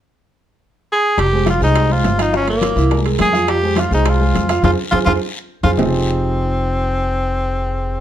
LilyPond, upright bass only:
\new Staff \with { instrumentName = "Upright bass" } { \clef bass \time 4/4 \key f \minor \tempo 4 = 209 r1 | f,,4. c,4. g,,4~ | g,,4. c,4. f,4~ | f,4. c,4. f,4 |
f,8 r8 f,8 f,8 r4. f,8 | f,,1~ | f,,1 | }